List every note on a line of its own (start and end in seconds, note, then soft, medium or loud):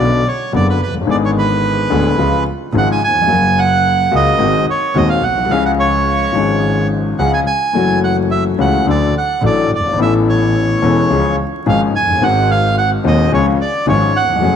0.00 0.20 B1 medium
0.00 0.20 B2 medium
0.00 0.20 D3 soft
0.00 0.20 F#3 soft
0.00 0.20 B3 soft
0.00 0.21 F#4 medium
0.00 0.27 D5 medium
0.28 0.52 C#5 medium
0.53 0.76 F#1 medium
0.53 0.76 F#2 medium
0.53 0.76 D3 medium
0.53 0.76 F#3 soft
0.53 0.76 B3 soft
0.53 0.76 F#4 medium
0.53 0.67 D5 medium
0.70 0.81 B4 medium
0.81 1.08 F#1 soft
0.81 0.95 B4 medium
0.88 0.94 F1 soft
0.94 1.01 F#1 soft
1.01 1.08 G1 medium
1.05 1.86 G#1 medium
1.05 1.87 G#1 medium
1.05 1.86 G#2 medium
1.05 1.85 D3 medium
1.05 1.86 G#3 soft
1.05 1.87 B3 medium
1.09 1.88 G#4 medium
1.09 1.16 D5 medium
1.25 1.31 C#5 medium
1.38 2.44 B4 medium
1.90 2.14 D1 medium
1.90 2.14 D2 medium
1.90 2.14 D3 medium
1.90 2.13 G#3 soft
1.90 2.14 B3 soft
1.90 2.14 G#4 medium
2.18 2.42 C#2 medium
2.18 2.42 C#3 medium
2.18 2.42 F3 soft
2.18 2.42 G#3 soft
2.18 2.42 F4 medium
2.73 2.96 G#1 medium
2.73 2.97 G#1 medium
2.73 2.97 G#2 medium
2.73 2.97 C#3 medium
2.73 2.97 F3 medium
2.73 2.97 G#3 medium
2.73 2.97 F4 medium
2.78 2.89 F#5 medium
2.92 3.02 G#5 medium
3.04 3.15 D#2 soft
3.04 3.60 G#5 medium
3.15 3.22 E2 soft
3.21 3.29 F2 medium
3.26 4.08 F#1 medium
3.26 4.08 F#2 medium
3.26 4.07 C#3 medium
3.26 4.08 F#3 medium
3.26 4.08 A#3 medium
3.26 4.09 F#4 medium
3.59 4.15 F#5 medium
4.11 4.35 C#2 medium
4.11 4.35 C#3 medium
4.11 4.35 F#3 medium
4.11 4.35 A#3 medium
4.11 4.35 F#4 medium
4.16 4.66 D#5 medium
4.38 4.62 G#1 medium
4.38 4.63 G#1 medium
4.38 4.63 G#2 medium
4.38 4.62 D#3 medium
4.38 4.62 G#3 medium
4.38 4.62 C4 medium
4.38 4.63 F#4 medium
4.70 4.98 C#5 medium
4.95 5.19 D#1 medium
4.95 5.19 D#2 medium
4.95 5.19 D#3 medium
4.95 5.19 G#3 medium
4.95 5.19 C4 medium
4.95 5.19 F#4 medium
4.95 5.09 D#5 medium
5.09 5.24 F5 medium
5.23 5.50 B1 soft
5.23 5.52 F#5 medium
5.30 5.37 A#1 soft
5.37 5.44 B1 soft
5.45 5.51 C2 medium
5.49 6.30 C#2 medium
5.49 6.31 C#2 medium
5.49 6.31 C#3 medium
5.49 6.30 F3 medium
5.49 6.30 G#3 medium
5.49 6.31 C#4 soft
5.49 5.64 F5 medium
5.53 6.32 G#4 medium
5.65 5.72 F#5 medium
5.80 6.87 C#5 medium
6.33 7.15 G#1 medium
6.33 7.15 G#2 medium
6.33 7.14 F3 medium
6.33 7.14 G#3 soft
6.33 7.15 C#4 soft
6.33 7.16 G#4 medium
7.18 7.42 C#2 medium
7.18 7.43 C#2 medium
7.18 7.43 C#3 medium
7.18 7.43 F3 soft
7.18 7.43 G#3 soft
7.18 7.43 C#4 soft
7.18 7.43 G#4 medium
7.18 7.32 F#5 medium
7.34 7.40 G#5 medium
7.47 7.99 G#5 medium
7.73 8.55 F#1 medium
7.73 8.55 F#2 medium
7.73 8.54 E3 medium
7.73 8.55 F#3 medium
7.73 8.55 A3 soft
7.73 8.56 C#4 soft
7.73 8.56 F#4 medium
8.04 8.16 F#5 medium
8.31 8.44 E5 medium
8.58 8.82 C#2 medium
8.58 8.83 C#3 medium
8.58 8.83 E3 medium
8.58 8.83 A3 soft
8.58 8.83 C#4 soft
8.58 8.83 F#4 medium
8.58 8.86 F#5 medium
8.86 9.10 D2 medium
8.86 9.11 D2 medium
8.86 9.11 D3 medium
8.86 9.10 F#3 medium
8.86 9.11 A3 soft
8.86 9.11 D4 soft
8.86 9.11 A4 medium
8.90 9.15 D5 medium
9.18 9.43 F#5 medium
9.41 9.66 A1 medium
9.41 9.67 A1 medium
9.41 9.67 A2 medium
9.41 9.67 F#3 medium
9.41 9.67 A3 soft
9.41 9.67 D4 soft
9.41 9.67 A4 medium
9.46 9.71 D5 medium
9.70 9.96 G1 soft
9.75 9.86 F#1 soft
9.75 9.99 D5 medium
9.86 9.93 G1 soft
9.93 10.00 G#1 medium
9.97 10.78 A1 medium
9.97 10.79 A1 medium
9.97 10.79 A2 medium
9.97 10.78 E3 medium
9.97 10.78 B3 soft
9.97 10.79 C#4 soft
10.01 10.80 A4 medium
10.01 10.14 E5 medium
10.29 11.36 C#5 medium
10.81 11.06 E1 medium
10.81 11.06 E2 medium
10.81 11.06 E3 medium
10.81 11.06 B3 medium
10.81 11.06 C#4 medium
10.81 11.06 A4 medium
11.09 11.33 C#2 medium
11.09 11.34 C#2 medium
11.09 11.34 C#3 medium
11.09 11.34 F3 medium
11.09 11.34 G#3 soft
11.09 11.34 C#4 soft
11.09 11.34 G#4 medium
11.66 11.90 G#1 medium
11.66 11.90 G#2 medium
11.66 11.90 F3 medium
11.66 11.90 G#3 soft
11.66 11.90 C#4 soft
11.66 11.90 G#4 medium
11.66 11.81 F5 medium
11.94 12.21 F#1 soft
11.94 12.23 G#5 medium
12.02 12.08 F1 soft
12.10 12.16 F#1 soft
12.15 12.22 G1 medium
12.20 13.00 G#1 medium
12.20 13.01 G#1 medium
12.20 13.00 G#2 medium
12.20 12.99 D#3 medium
12.20 13.00 G#3 medium
12.20 13.01 C4 soft
12.20 13.01 F#4 medium
12.20 12.51 F#5 medium
12.51 12.76 F5 medium
12.78 12.90 F#5 medium
13.04 13.27 D#1 medium
13.04 13.27 D#2 medium
13.04 13.28 D#2 medium
13.04 13.27 D#3 medium
13.04 13.27 G#3 soft
13.04 13.28 C4 medium
13.04 13.28 F#4 medium
13.04 13.32 D#5 medium
13.32 13.55 C#2 medium
13.32 13.55 C#3 medium
13.32 13.55 F3 medium
13.32 13.55 G#3 soft
13.32 13.55 C#4 medium
13.32 13.55 G#4 medium
13.32 13.46 C#5 medium
13.61 13.86 D5 medium
13.87 14.10 G#1 medium
13.87 14.11 G#1 medium
13.87 14.10 G#2 medium
13.87 14.10 F3 medium
13.87 14.10 G#3 medium
13.87 14.11 C#4 medium
13.87 14.10 G#4 medium
13.87 14.17 C#5 medium
14.16 14.56 F#5 medium
14.22 14.29 D#2 soft
14.29 14.36 E2 soft
14.36 14.43 F2 medium
14.40 14.56 F#1 medium
14.40 14.56 F#2 medium
14.40 14.56 F#3 medium
14.40 14.56 A3 medium
14.40 14.56 C#4 medium
14.45 14.56 G#4 medium